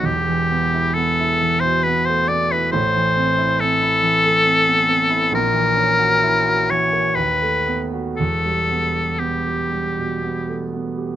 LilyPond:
<<
  \new Staff \with { instrumentName = "Oboe" } { \time 3/4 \key e \minor \tempo 4 = 67 g'4 a'8. c''16 b'16 c''16 d''16 b'16 | c''4 a'2 | ais'4. cis''8 b'8. r16 | a'4 g'4. r8 | }
  \new Staff \with { instrumentName = "Grand piano" } { \time 3/4 \key e \minor <e,, e,>16 e16 b16 e'16 b16 e'16 e16 b,16 b16 a16 b16 e'16 | <a,, a,>16 e16 c'16 e'16 c'16 e'16 e16 a16 c'16 b16 c'16 e'16 | <ais,, ais,>16 e16 cis'16 fis'16 e'16 fis'16 e16 ais16 dis,16 a16 b16 fis'16 | <e,, e,>16 g16 b16 g'16 b16 g'16 g16 b,16 b16 a16 b16 g'16 | }
>>